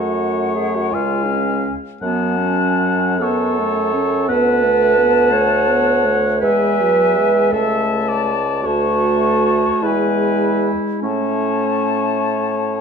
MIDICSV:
0, 0, Header, 1, 6, 480
1, 0, Start_track
1, 0, Key_signature, 3, "major"
1, 0, Tempo, 722022
1, 1343, Tempo, 782269
1, 1344, Time_signature, 6, 3, 24, 8
1, 2303, Tempo, 700117
1, 3743, Tempo, 738916
1, 5663, Tempo, 792602
1, 6623, Tempo, 818554
1, 8138, End_track
2, 0, Start_track
2, 0, Title_t, "Flute"
2, 0, Program_c, 0, 73
2, 0, Note_on_c, 0, 78, 41
2, 610, Note_on_c, 0, 80, 36
2, 620, Note_off_c, 0, 78, 0
2, 1160, Note_off_c, 0, 80, 0
2, 1338, Note_on_c, 0, 81, 39
2, 2047, Note_off_c, 0, 81, 0
2, 2073, Note_on_c, 0, 81, 38
2, 2773, Note_off_c, 0, 81, 0
2, 2790, Note_on_c, 0, 81, 48
2, 4055, Note_off_c, 0, 81, 0
2, 4220, Note_on_c, 0, 80, 50
2, 4948, Note_on_c, 0, 81, 45
2, 4958, Note_off_c, 0, 80, 0
2, 5669, Note_off_c, 0, 81, 0
2, 5674, Note_on_c, 0, 81, 44
2, 6403, Note_on_c, 0, 80, 39
2, 6412, Note_off_c, 0, 81, 0
2, 6932, Note_off_c, 0, 80, 0
2, 7098, Note_on_c, 0, 81, 41
2, 8138, Note_off_c, 0, 81, 0
2, 8138, End_track
3, 0, Start_track
3, 0, Title_t, "Oboe"
3, 0, Program_c, 1, 68
3, 0, Note_on_c, 1, 73, 38
3, 625, Note_on_c, 1, 77, 41
3, 635, Note_off_c, 1, 73, 0
3, 1168, Note_off_c, 1, 77, 0
3, 1342, Note_on_c, 1, 78, 40
3, 2086, Note_on_c, 1, 73, 43
3, 2095, Note_off_c, 1, 78, 0
3, 2782, Note_off_c, 1, 73, 0
3, 2786, Note_on_c, 1, 78, 52
3, 4197, Note_off_c, 1, 78, 0
3, 4235, Note_on_c, 1, 76, 45
3, 4929, Note_off_c, 1, 76, 0
3, 4944, Note_on_c, 1, 76, 49
3, 5301, Note_on_c, 1, 74, 48
3, 5310, Note_off_c, 1, 76, 0
3, 5672, Note_on_c, 1, 73, 48
3, 5681, Note_off_c, 1, 74, 0
3, 6385, Note_on_c, 1, 71, 44
3, 6394, Note_off_c, 1, 73, 0
3, 6923, Note_off_c, 1, 71, 0
3, 7103, Note_on_c, 1, 73, 41
3, 8138, Note_off_c, 1, 73, 0
3, 8138, End_track
4, 0, Start_track
4, 0, Title_t, "Clarinet"
4, 0, Program_c, 2, 71
4, 0, Note_on_c, 2, 66, 55
4, 367, Note_on_c, 2, 68, 58
4, 377, Note_off_c, 2, 66, 0
4, 498, Note_on_c, 2, 66, 48
4, 508, Note_off_c, 2, 68, 0
4, 609, Note_on_c, 2, 65, 55
4, 619, Note_off_c, 2, 66, 0
4, 850, Note_on_c, 2, 61, 51
4, 860, Note_off_c, 2, 65, 0
4, 1168, Note_off_c, 2, 61, 0
4, 1321, Note_on_c, 2, 59, 55
4, 1559, Note_on_c, 2, 61, 56
4, 1569, Note_off_c, 2, 59, 0
4, 2061, Note_on_c, 2, 69, 69
4, 2070, Note_off_c, 2, 61, 0
4, 2789, Note_on_c, 2, 71, 76
4, 2799, Note_off_c, 2, 69, 0
4, 3492, Note_on_c, 2, 73, 73
4, 3502, Note_off_c, 2, 71, 0
4, 4209, Note_off_c, 2, 73, 0
4, 4213, Note_on_c, 2, 71, 76
4, 4933, Note_on_c, 2, 69, 65
4, 4943, Note_off_c, 2, 71, 0
4, 5172, Note_off_c, 2, 69, 0
4, 5650, Note_on_c, 2, 66, 70
4, 6378, Note_on_c, 2, 64, 66
4, 6387, Note_off_c, 2, 66, 0
4, 7085, Note_off_c, 2, 64, 0
4, 7089, Note_on_c, 2, 61, 56
4, 8138, Note_off_c, 2, 61, 0
4, 8138, End_track
5, 0, Start_track
5, 0, Title_t, "French horn"
5, 0, Program_c, 3, 60
5, 0, Note_on_c, 3, 57, 47
5, 620, Note_on_c, 3, 56, 45
5, 630, Note_off_c, 3, 57, 0
5, 1165, Note_off_c, 3, 56, 0
5, 1347, Note_on_c, 3, 54, 51
5, 2051, Note_off_c, 3, 54, 0
5, 2067, Note_on_c, 3, 59, 51
5, 2308, Note_on_c, 3, 57, 44
5, 2318, Note_off_c, 3, 59, 0
5, 2545, Note_on_c, 3, 61, 54
5, 2556, Note_off_c, 3, 57, 0
5, 2787, Note_on_c, 3, 59, 55
5, 2797, Note_off_c, 3, 61, 0
5, 3022, Note_on_c, 3, 57, 51
5, 3033, Note_off_c, 3, 59, 0
5, 3257, Note_off_c, 3, 57, 0
5, 3261, Note_on_c, 3, 59, 47
5, 3493, Note_on_c, 3, 57, 53
5, 3503, Note_off_c, 3, 59, 0
5, 3739, Note_on_c, 3, 59, 51
5, 3749, Note_off_c, 3, 57, 0
5, 3980, Note_on_c, 3, 57, 50
5, 3990, Note_off_c, 3, 59, 0
5, 4223, Note_on_c, 3, 56, 52
5, 4233, Note_off_c, 3, 57, 0
5, 4471, Note_on_c, 3, 54, 45
5, 4481, Note_off_c, 3, 56, 0
5, 4707, Note_on_c, 3, 56, 46
5, 4717, Note_off_c, 3, 54, 0
5, 4943, Note_on_c, 3, 57, 57
5, 4953, Note_off_c, 3, 56, 0
5, 5482, Note_off_c, 3, 57, 0
5, 5659, Note_on_c, 3, 57, 59
5, 6393, Note_on_c, 3, 56, 50
5, 6402, Note_off_c, 3, 57, 0
5, 7106, Note_on_c, 3, 57, 44
5, 7115, Note_off_c, 3, 56, 0
5, 8138, Note_off_c, 3, 57, 0
5, 8138, End_track
6, 0, Start_track
6, 0, Title_t, "Bassoon"
6, 0, Program_c, 4, 70
6, 0, Note_on_c, 4, 42, 43
6, 619, Note_on_c, 4, 37, 43
6, 629, Note_off_c, 4, 42, 0
6, 1164, Note_off_c, 4, 37, 0
6, 1343, Note_on_c, 4, 42, 45
6, 2761, Note_off_c, 4, 42, 0
6, 2791, Note_on_c, 4, 38, 53
6, 4200, Note_off_c, 4, 38, 0
6, 4221, Note_on_c, 4, 40, 50
6, 4922, Note_off_c, 4, 40, 0
6, 4938, Note_on_c, 4, 37, 54
6, 5667, Note_on_c, 4, 38, 48
6, 5676, Note_off_c, 4, 37, 0
6, 6275, Note_off_c, 4, 38, 0
6, 6378, Note_on_c, 4, 40, 45
6, 6909, Note_off_c, 4, 40, 0
6, 7097, Note_on_c, 4, 45, 43
6, 8138, Note_off_c, 4, 45, 0
6, 8138, End_track
0, 0, End_of_file